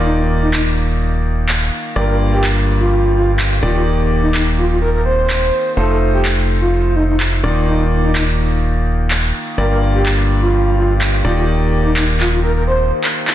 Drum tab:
CP |----x-------x---|----x-------x---|----x-------x---|----x-------x---|

CP |----x-------x---|----x-------x---|----x-x------x-x|